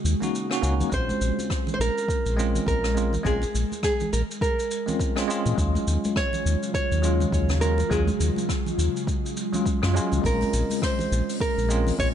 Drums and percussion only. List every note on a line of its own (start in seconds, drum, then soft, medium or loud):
0.05 shaker medium
0.22 low conga medium
0.22 shaker soft
0.35 shaker medium
0.51 cross-stick medium
0.51 shaker soft
0.63 shaker medium
0.80 high conga medium
0.80 low conga medium
0.80 shaker soft
0.92 kick loud
0.92 shaker medium
1.09 high conga medium
1.09 shaker soft
1.21 shaker medium
1.39 high conga medium
1.39 shaker soft
1.50 kick loud
1.50 cross-stick medium
1.50 shaker medium
1.67 low conga medium
1.67 shaker soft
1.81 shaker medium
1.98 shaker soft
2.08 kick loud
2.08 shaker medium
2.26 shaker soft
2.39 shaker medium
2.55 low conga medium
2.55 shaker medium
2.67 kick loud
2.67 shaker medium
2.84 cross-stick medium
2.84 shaker soft
2.97 shaker medium
3.13 low conga medium
3.13 shaker soft
3.25 kick loud
3.25 shaker medium
3.42 high conga medium
3.42 shaker soft
3.55 shaker medium
3.72 high conga medium
3.72 shaker soft
3.83 kick loud
3.83 cross-stick medium
3.83 shaker medium
4.00 low conga medium
4.00 shaker soft
4.13 shaker medium
4.31 shaker medium
4.41 kick loud
4.41 shaker medium
4.59 shaker soft
4.71 shaker medium
4.88 low conga medium
4.88 shaker soft
5.00 kick loud
5.00 shaker medium
5.16 cross-stick medium
5.16 shaker soft
5.30 shaker medium
5.46 low conga medium
5.46 shaker medium
5.58 kick loud
5.58 shaker medium
5.75 high conga medium
5.75 shaker soft
5.88 shaker medium
6.04 high conga medium
6.04 shaker medium
6.16 kick loud
6.16 cross-stick medium
6.16 shaker medium
6.33 low conga medium
6.33 shaker soft
6.47 shaker loud
6.63 shaker soft
6.74 kick loud
6.74 shaker medium
6.92 shaker soft
7.04 shaker medium
7.20 low conga medium
7.20 shaker soft
7.32 kick loud
7.32 shaker medium
7.49 cross-stick medium
7.49 shaker soft
7.62 shaker medium
7.78 low conga medium
7.78 shaker soft
7.91 kick loud
7.91 shaker medium
8.07 high conga medium
8.07 shaker soft
8.21 shaker medium
8.36 high conga medium
8.36 shaker soft
8.49 kick loud
8.49 cross-stick medium
8.49 shaker medium
8.66 low conga medium
8.66 shaker soft
8.79 shaker medium
8.97 shaker soft
9.07 kick loud
9.07 shaker medium
9.26 shaker soft
9.37 shaker medium
9.53 low conga medium
9.53 shaker soft
9.66 kick loud
9.66 shaker medium
9.83 cross-stick medium
9.83 shaker soft
9.96 shaker medium
10.12 high conga medium
10.12 low conga medium
10.12 shaker medium
10.24 kick loud
10.24 open hi-hat medium
10.24 shaker medium
10.41 open hi-hat soft
10.41 high conga medium
10.41 shaker soft
10.53 shaker medium
10.70 open hi-hat medium
10.70 high conga medium
10.70 shaker medium
10.82 kick loud
10.82 cross-stick medium
10.82 open hi-hat medium
10.82 shaker medium
10.99 low conga medium
10.99 shaker soft
11.13 shaker medium
11.29 open hi-hat medium
11.29 shaker medium
11.40 kick loud
11.40 shaker medium
11.58 shaker soft
11.70 shaker medium
11.87 open hi-hat medium
11.87 low conga medium
11.87 shaker medium
11.99 kick loud
11.99 open hi-hat medium
11.99 shaker medium